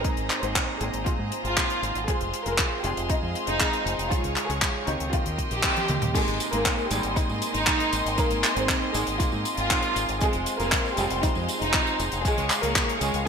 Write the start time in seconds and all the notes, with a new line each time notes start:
Already playing: G#4 C5 D#5 A#5
0.04 G#2 A#3 C4 D#4 G#4 A#4, kick, closed hi-hat
0.17 G#1, closed hi-hat
0.30 clap, closed hi-hat
0.43 G#1 G#2 A#3 C4 D#4 G#4 C5, closed hi-hat
0.55 kick, clap, closed hi-hat
0.81 G#1 G#2 A#3 C4 D#4 G#4, closed hi-hat
0.93 G#1, closed hi-hat
1.06 F4, kick, closed hi-hat
1.19 G#2 A#3 C4 D#4 G#4
1.32 closed hi-hat
1.44 G#1 F4, closed hi-hat
1.57 G#2 A#3 C4 D#4 G#4, kick, clap, closed hi-hat
1.70 closed hi-hat
1.82 G#1, closed hi-hat
1.95 G#1, closed hi-hat
2.08 G#3 C4 F4 G#4 F5 C6, kick, closed hi-hat
2.21 F1, closed hi-hat
2.34 closed hi-hat
2.46 F1 G#3 C4 F4 G#4 A#4, closed hi-hat
2.58 kick, clap, closed hi-hat
2.84 F1 G#3 C4 F4 G4 G#4, closed hi-hat
2.97 F1, closed hi-hat
3.10 D#4, kick, closed hi-hat
3.22 F2 G#3 C4 F4 G#4
3.35 closed hi-hat
3.47 F1 D#4, closed hi-hat
3.60 G#3 C4 F4 G#4, kick, clap, closed hi-hat
3.73 closed hi-hat
3.86 F1, closed hi-hat
3.98 F1, closed hi-hat
4.11 C#3 G#3 C#4 F4 G#4 C#5 C#6, kick, closed hi-hat
4.24 C#2, closed hi-hat
4.36 clap, closed hi-hat
4.49 C#2 C#3 G#3 C#4 F4 G#4, closed hi-hat
4.62 kick, clap, closed hi-hat
4.87 C#2 D#3 A#3 C4 D#4 G4, closed hi-hat
5.00 C#2, closed hi-hat
5.13 F4 A#4 D#5 G5 C6, kick, closed hi-hat
5.26 D#2 D#3 A#3 C4 D#4 G4, closed hi-hat
5.38 kick, closed hi-hat
5.51 A#1 G4, closed hi-hat
5.63 D#3 A#3 C4 D#4 G4, kick, clap, closed hi-hat
5.77 closed hi-hat, high tom
5.88 D#2, closed hi-hat, mid tom
6.02 D#2, closed hi-hat, mid tom
6.15 G#2 G#3 A#3 C4 D#4 G#4 A#4 D#5 G#5 C6, kick, closed hi-hat, crash, tambourine
6.27 G#1, closed hi-hat, tambourine
6.40 closed hi-hat, tambourine
6.53 G#1 G#2 A#3 C4 D#4 G#4 A#4, closed hi-hat, tambourine
6.65 kick, clap, closed hi-hat, tambourine
6.78 tambourine
6.91 G#1 G#2 G3 A#3 C4 D#4 G4 G#4, closed hi-hat, tambourine
7.03 G#1, closed hi-hat, tambourine
7.16 D#4, kick, closed hi-hat, tambourine
7.29 G#2 A#3 C4 D#4 G#4, tambourine
7.42 closed hi-hat, tambourine
7.54 G#1 D#4, closed hi-hat, tambourine
7.67 G#2 A#3 C4 D#4 G#4, kick, clap, closed hi-hat, tambourine
7.80 closed hi-hat, tambourine
7.93 G#1, closed hi-hat, tambourine
8.05 G#1, closed hi-hat, tambourine
8.18 G#2 A#3 C4 D#4 G#4 A#4, kick, closed hi-hat, tambourine
8.30 G#1, closed hi-hat, tambourine
8.43 clap, closed hi-hat, tambourine
8.56 G#1 G#2 A#3 C4 D#4 G#4 C5, closed hi-hat, tambourine
8.69 kick, clap, closed hi-hat, tambourine
8.82 tambourine
8.94 G#1 G#2 G#3 A#3 C4 D#4 G#4, closed hi-hat, tambourine
9.07 G#1, closed hi-hat, tambourine
9.20 F4, kick, closed hi-hat, tambourine
9.32 G#2 A#3 C4 D#4 G#4, tambourine
9.45 closed hi-hat, tambourine
9.57 G#1 F4, closed hi-hat, tambourine
9.70 G#2 A#3 C4 D#4 G#4, kick, clap, closed hi-hat, tambourine
9.82 closed hi-hat, tambourine
9.96 G#1, closed hi-hat, tambourine
10.09 G#1, closed hi-hat, tambourine
10.21 G#3 C4 F4 G#4 C5 F5 C6, kick, closed hi-hat, tambourine
10.33 F1, closed hi-hat, tambourine
10.46 closed hi-hat, tambourine
10.59 F1 G#3 A#3 C4 F4 G#4 A#4, closed hi-hat, tambourine
10.72 kick, clap, closed hi-hat, tambourine
10.85 tambourine
10.97 F1 G3 G#3 C4 F4 G4 G#4, closed hi-hat, tambourine
11.10 F1, closed hi-hat, tambourine
11.23 D#4, kick, closed hi-hat, tambourine
11.35 F2 G#3 C4 F4 G#4, tambourine
11.49 closed hi-hat, tambourine
11.61 F1 D#4, closed hi-hat, tambourine
11.74 G#3 C4 F4 G#4, kick, clap, closed hi-hat, tambourine
11.87 closed hi-hat, tambourine
12.00 F1, closed hi-hat, tambourine
12.12 F1, closed hi-hat, tambourine
12.25 C#3 G#3 C#4 F4 G#4 C#5 C#6, kick, closed hi-hat, tambourine
12.37 C#2, closed hi-hat, tambourine
12.50 clap, closed hi-hat, tambourine
12.63 C#2 C#3 G#3 A#3 C#4 F4 G#4 A#4, closed hi-hat, tambourine
12.76 kick, clap, closed hi-hat, tambourine
12.89 closed hi-hat, tambourine
13.01 C#2 C#3 G#3 C#4 F4 G#4, closed hi-hat, tambourine
13.14 C#2, closed hi-hat, tambourine